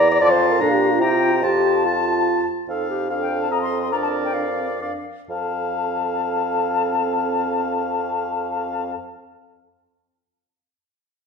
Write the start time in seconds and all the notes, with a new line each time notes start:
Already playing: E2 E4 D5 A#5
0.11 D5
0.21 F2 F4 D5 F5 A5
0.31 C5
0.51 A#4
0.60 A#2 D4 A4 A#5
0.71 G4
0.92 F4
1.00 C3 E4 G4 G5 A#5
1.13 F4
1.32 G4
1.42 F2 F4 G4 A5
1.85 F4 A5
2.69 F2 D#4 A4 F5
2.90 G4
3.09 D4 A4 F5
3.20 G5
3.41 A5
3.51 C4 D#5 A#5
3.62 C6
3.82 C6
3.91 D4 A#4 D5 A#5
4.02 A5
4.23 G5
4.33 D4 F5
4.57 C4
4.80 D4 A#4 D5
5.29 F2 C4 A4 F5 A5